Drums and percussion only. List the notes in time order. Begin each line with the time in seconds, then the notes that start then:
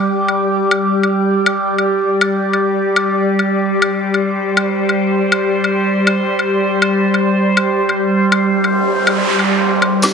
0.28 high woodblock
0.71 high woodblock
1.03 high woodblock
1.46 high woodblock
1.78 high woodblock
2.21 high woodblock
2.53 high woodblock
2.96 high woodblock
3.39 high woodblock
3.82 high woodblock
4.14 high woodblock
4.57 high woodblock
4.89 high woodblock
5.32 high woodblock
5.64 high woodblock
6.07 high woodblock
6.39 high woodblock
6.82 high woodblock
7.14 high woodblock
7.57 high woodblock
7.89 high woodblock
8.32 high woodblock
8.64 high woodblock
9.07 high woodblock
9.39 high woodblock
9.82 high woodblock
10.02 snare, closed hi-hat, tambourine